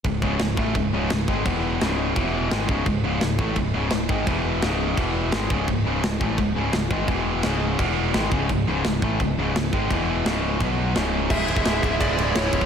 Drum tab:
CC |x---x---x---x---|x---x---x---x---|x---x---x---x---|x---x---x---x---|
RD |----------------|----------------|----------------|----------------|
SD |----o-------o---|----o-------o---|----o-------o---|----o-------o---|
BD |o-o---o-o-----o-|o-------o-----o-|o-----o-o-----o-|o-------o-----o-|

CC |x---x---x---x---|x---x---x---x---|x---x---x---x---|x---x---x---x---|
RD |----------------|----------------|----------------|----------------|
SD |----o-------o---|----o-------o---|----o-------o---|----o-------o---|
BD |o-----o-o-----o-|o-------o-----o-|o-----o-o-----o-|o-------o-------|

CC |x---------------|
RD |--x-x-x-x-x-x-x-|
SD |----o-------o---|
BD |o--o--o-o-----oo|